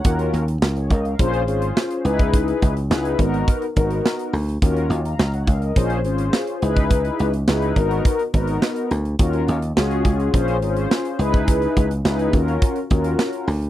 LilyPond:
<<
  \new Staff \with { instrumentName = "Analog polysynth" } { \time 4/4 \key ees \minor \tempo 4 = 105 << { <des'' ges''>16 r8. <f' bes'>16 <aes' des''>16 <bes' ees''>16 <bes' f''>8 r4. r16 | r1 | r8. <f'' bes''>8 <des'' ges''>16 <bes' f''>16 <bes' ees''>8 r4. r16 | r1 |
r1 | r1 | } \\ { <des' f' ges' bes'>8 r4. <des' f' aes' c''>8 <des' f' aes' c''>4 <ees' fes' aes' ces''>8~ | <ees' fes' aes' ces''>8 r8 <ees' fes' aes' ces''>8 <ces' ees' ges' bes'>4 <ces' ees' ges' bes'>4 r8 | <des' f' ges' bes'>8 r4. <des' f' aes' c''>8 <des' f' aes' c''>4 <ees' fes' aes' ces''>8~ | <ees' fes' aes' ces''>8 r8 <ees' fes' aes' ces''>8 <ces' ees' ges' bes'>4 <ces' ees' ges' bes'>4 r8 |
<des' f' ges' bes'>8 r8 <des' f' ges' aes'>4 <des' f' aes' c''>8 <des' f' aes' bes' c''>4 <ees' fes' aes' ces''>8~ | <ees' fes' aes' ces''>8 r8 <ees' fes' aes' ces''>8 <des' f' ges' bes'>4 <des' f' ges' bes'>4 r8 | } >> }
  \new Staff \with { instrumentName = "Slap bass" } { \clef bass \time 4/4 \key ees \minor ees,8 ees,8 des,8 des,8 bes,,8 aes,,8 r8 des,8~ | des,8 des,8 des,8 aes,,8 r8 aes,,8 r8 d,8 | ees,8 ees,8 des,8 des,8 bes,,8 aes,,8 r8 des,8~ | des,8 des,8 des,8 aes,,8 r8 aes,,8 r8 d,8 |
ees,8 ees,8 des,8 des,8 bes,,8 aes,,8 r8 des,8~ | des,8 des,8 des,8 ees,8 r8 ees,8 r8 d,8 | }
  \new DrumStaff \with { instrumentName = "Drums" } \drummode { \time 4/4 <hh bd>16 hh16 hh16 hh16 sn16 hh16 <hh bd>16 hh16 <hh bd>16 hh16 hh16 hh16 sn16 hh16 hh16 <hh bd>16 | <hh bd>16 hh16 <hh bd>16 hh16 sn16 hh16 <hh bd>16 hh16 <hh bd>16 hh16 <hh bd>16 hh16 sn16 hh16 hho16 hh16 | <hh bd>16 hh16 hh16 hh16 sn16 hh16 <hh bd>16 hh16 <hh bd>16 hh16 hh16 hh16 sn16 hh16 hh16 <hh bd>16 | <hh bd>16 hh16 hh16 hh16 sn16 hh16 <hh bd>16 hh16 <hh bd>16 hh16 <hh bd>16 hh16 sn16 hh16 hh16 hh16 |
<hh bd>16 hh16 hh16 hh16 sn16 hh16 <hh bd>16 hh16 <hh bd>16 hh16 hh16 hh16 sn16 hh16 hh16 <hh bd>16 | <hh bd>16 hh16 <hh bd>16 hh16 sn16 hh16 <hh bd>16 hh16 <hh bd>16 hh16 <hh bd>16 hh16 sn16 hh16 hho16 hh16 | }
>>